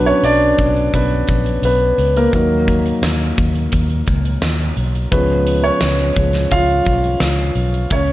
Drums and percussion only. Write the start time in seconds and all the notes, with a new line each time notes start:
0.07 closed hi-hat
0.24 closed hi-hat
0.42 closed hi-hat
0.58 kick, closed hi-hat
0.76 closed hi-hat
0.94 kick, closed hi-hat
1.28 kick, closed hi-hat
1.46 closed hi-hat
1.63 closed hi-hat
1.98 closed hi-hat
2.16 closed hi-hat
2.33 kick, closed hi-hat
2.68 kick, closed hi-hat
2.86 closed hi-hat
3.03 snare, closed hi-hat
3.21 closed hi-hat
3.38 kick, closed hi-hat
3.55 closed hi-hat
3.72 kick, closed hi-hat
3.90 closed hi-hat
4.07 kick, closed hi-hat
4.25 closed hi-hat
4.42 snare, closed hi-hat
4.60 closed hi-hat
4.77 closed hi-hat
4.95 closed hi-hat
5.12 kick, closed hi-hat
5.30 closed hi-hat
5.47 closed hi-hat
5.64 closed hi-hat
5.81 snare, closed hi-hat
6.16 kick, closed hi-hat
6.33 snare, closed hi-hat
6.51 kick, closed hi-hat
6.69 closed hi-hat
6.85 kick, closed hi-hat
7.04 closed hi-hat
7.20 snare, closed hi-hat
7.38 closed hi-hat
7.56 closed hi-hat
7.74 closed hi-hat
7.90 kick, closed hi-hat
8.08 closed hi-hat